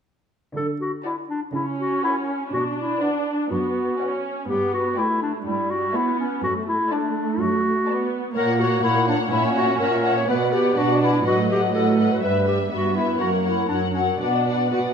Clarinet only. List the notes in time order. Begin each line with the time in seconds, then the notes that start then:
0.56 A4
0.81 F#4
1.05 E4
1.30 D4
1.55 E4
1.79 F#4
2.04 E4
2.29 C#4
2.53 F#4
2.78 E4
3.02 D4
3.51 F#4
4.49 G4
4.74 F#4
4.98 E4
5.22 D4
5.46 E4
5.71 F#4
5.96 E4
6.20 C#4
6.44 F#4
6.67 E4
6.92 D4
7.40 F#4
8.35 A#4
8.60 F#4
8.83 E4
9.08 D4
9.32 E4
9.56 F#4
9.80 A#4
10.17 C#5
10.30 B4
10.53 G4
10.77 F#4
11.02 E4
11.27 F#4
11.51 G4
11.74 A4
12.12 B4
12.24 B4
12.48 G4
12.72 F#4
12.96 E4
13.20 F#4
13.44 E4
13.69 D4
13.93 C#4
14.20 B3